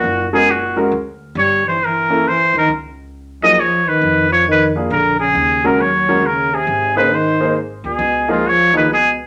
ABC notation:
X:1
M:3/4
L:1/8
Q:"Swing" 1/4=136
K:Dbmix
V:1 name="Muted trumpet"
G A G z3 | d =c B2 c B | z3 e d c- | c d c z B A- |
A B d2 B A- | A c =c2 z A- | A F d c A z |]
V:2 name="Grand piano"
z [A,DGB] z [A,DGB] z2 | z3 [B,D=E=A] z2 | z3 [F,B,EA] z2 | z3 [B,=DFA] z2 |
z [A,DGB] z [A,DGB] z2 | z [B,EA=c] z [B,EAc] z2 | z [F,B,EA] z [F,B,EA] z2 |]
V:3 name="Trombone" clef=bass
B,, C, B,, z3 | =G, =E, E,2 E, _E, | z3 G, F, E,- | E, F, E, z =D, _D,- |
D, D, G,2 D, =C,- | =C, D, E,2 z _C,- | C, A,, F, E, C, z |]
V:4 name="Upright bass" clef=bass
G,,,4 =D,,2 | =G,,,4- G,,, =D,, | D,,6 | F,,4 B,,,2 |
E,,6 | A,,,4- A,,, =D,, | D,,6 |]